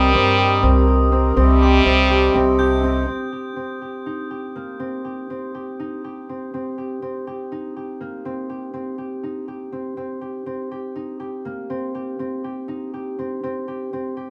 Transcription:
0.00 0.12 C2 medium
0.00 1.10 G3 loud
0.00 0.14 C4 medium
0.00 3.04 C4 medium
0.00 0.38 G4 medium
0.00 1.36 A#4 medium
0.00 1.32 D#5 medium
0.00 0.45 D#6 medium
0.14 0.61 G2 medium
0.14 0.62 C4 medium
0.39 0.87 G4 medium
0.63 1.33 C2 medium
0.63 1.12 C4 medium
0.87 1.61 G4 medium
1.12 1.36 C4 medium
1.36 1.83 C2 medium
1.36 3.07 C3 medium
1.36 2.80 G3 loud
1.36 1.85 C4 medium
1.36 3.06 G4 medium
1.36 3.06 A4 medium
1.36 3.07 D#5 medium
1.61 2.10 G4 medium
1.61 2.42 C6 medium
1.86 2.32 C2 medium
1.86 2.35 C4 medium
2.10 2.59 G4 medium
2.35 3.04 C2 medium
2.35 2.83 C4 medium
2.59 3.32 G4 medium
2.59 3.29 G6 soft
2.83 3.07 C4 medium
3.08 3.56 C4 soft
3.32 3.81 G4 soft
3.56 4.79 C4 soft
3.82 4.30 G4 soft
4.06 5.79 D#4 soft
4.31 5.04 G4 soft
4.55 7.77 A#3 soft
4.80 5.30 C4 medium
5.05 5.54 G4 soft
5.30 6.29 C4 soft
5.55 6.04 G4 soft
5.80 7.51 D#4 soft
6.04 6.77 G4 soft
6.29 6.53 C4 soft
6.54 7.02 C4 medium
6.78 7.27 G4 soft
7.02 8.25 C4 soft
7.27 7.76 G4 soft
7.52 9.23 D#4 soft
7.77 8.49 G4 soft
8.01 11.22 A#3 soft
8.25 8.73 C4 medium
8.49 8.98 G4 soft
8.74 9.72 C4 soft
8.98 9.47 G4 soft
9.23 10.95 D#4 soft
9.48 10.21 G4 soft
9.72 9.97 C4 soft
9.97 10.46 C4 medium
10.21 10.71 G4 soft
10.46 11.69 C4 medium
10.71 11.19 G4 soft
10.96 12.68 D#4 soft
11.20 11.94 G4 soft
11.45 14.30 A#3 soft
11.70 12.19 C4 medium
11.95 12.44 G4 soft
12.19 13.18 C4 soft
12.44 12.93 G4 soft
12.68 14.30 D#4 medium
12.94 13.67 G4 soft
13.19 13.43 C4 medium
13.43 13.93 C4 medium
13.68 14.16 G4 soft
13.93 14.30 C4 medium
14.17 14.30 G4 soft

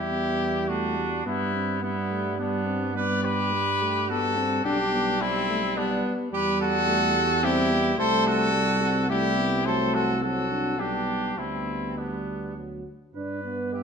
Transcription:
0.00 1.22 E2 medium
0.00 1.21 G3 medium
0.00 0.68 E4 medium
0.00 0.70 G4 loud
0.11 0.70 B3 medium
0.69 0.99 A3 medium
0.69 1.25 D4 medium
0.69 1.26 F#4 loud
0.97 1.25 G3 medium
1.26 4.61 G2 medium
1.26 1.81 G3 medium
1.26 1.81 B3 medium
1.26 1.54 B3 medium
1.26 1.82 E4 loud
1.54 1.82 C4 medium
1.82 2.93 G3 medium
1.82 2.37 B3 medium
1.82 1.95 B3 medium
1.82 2.38 E4 loud
2.11 2.38 A3 medium
2.38 2.68 B3 loud
2.38 2.94 B3 medium
2.38 2.98 D4 loud
2.67 2.95 C4 medium
2.95 4.62 G3 medium
2.95 3.55 B3 loud
2.95 3.23 B4 loud
2.95 3.27 D5 loud
3.23 4.10 G4 loud
3.23 4.09 B4 loud
3.53 3.83 G3 medium
3.81 4.09 A3 medium
4.09 4.37 B3 loud
4.09 4.65 F#4 loud
4.09 4.64 A4 loud
4.37 4.64 C4 loud
4.65 6.02 B1 medium
4.65 5.74 G3 medium
4.65 4.78 D4 loud
4.65 5.20 D4 medium
4.65 5.23 G4 loud
4.93 5.20 B3 medium
5.21 5.33 G3 medium
5.21 5.78 C4 loud
5.21 5.79 E4 loud
5.49 5.61 A3 medium
5.77 6.13 G3 loud
5.77 6.32 B3 loud
5.77 6.13 B3 medium
5.77 6.13 D4 loud
6.33 7.94 E2 medium
6.33 6.68 G3 loud
6.33 7.40 G3 medium
6.33 6.59 G4 loud
6.33 6.59 B4 loud
6.61 7.46 F#4 loud
6.61 7.45 A4 loud
6.88 7.13 A3 loud
7.16 7.42 G3 medium
7.43 7.97 G3 medium
7.43 7.72 C4 loud
7.43 7.99 E4 loud
7.43 7.98 G4 loud
7.71 7.97 B3 loud
7.98 10.80 C2 medium
7.98 9.06 G3 medium
7.98 8.52 A3 loud
7.98 8.28 A4 loud
7.98 8.25 C5 loud
8.26 9.09 F#4 loud
8.26 9.07 A4 loud
8.53 8.82 G3 medium
8.81 9.10 C4 medium
9.09 9.66 G3 medium
9.09 9.38 A3 loud
9.09 9.64 E4 loud
9.09 9.67 G4 loud
9.37 9.64 B3 loud
9.65 10.22 F#3 medium
9.65 10.24 A3 loud
9.65 9.96 A4 loud
9.65 9.96 C5 loud
9.94 10.22 F#4 loud
9.94 10.22 A4 loud
10.22 10.79 F#3 medium
10.22 10.50 C4 medium
10.22 10.80 F#4 medium
10.22 10.81 A4 loud
10.50 10.78 D4 medium
10.79 11.36 B1 medium
10.79 11.36 G3 medium
10.79 11.36 B3 medium
10.79 11.37 D4 medium
10.79 11.40 G4 loud
11.37 12.83 D2 medium
11.37 11.96 G3 medium
11.37 12.83 B3 medium
11.37 11.96 C4 medium
11.37 11.99 E4 medium
11.96 12.55 G3 medium
11.96 12.55 B3 medium
11.96 12.57 D4 medium
12.57 12.86 F#3 medium
13.15 13.83 G2 medium
13.15 13.42 D4 medium
13.15 13.75 B4 medium
13.15 13.69 B4 medium
13.15 13.75 D5 soft
13.44 13.83 B3 medium
13.73 13.83 G4 medium
13.73 13.83 E5 medium

